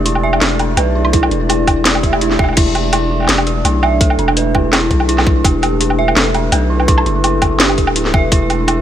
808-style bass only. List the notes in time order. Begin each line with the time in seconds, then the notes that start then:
Already playing: E1
0.41 E1
0.77 B1
1.31 E1
2.39 E1
2.57 E1
3.29 E1
3.65 B1
4.19 E1
4.91 B1
5.44 E1
6.16 E1
6.52 B1
7.06 F#1
8.14 E1
8.32 E1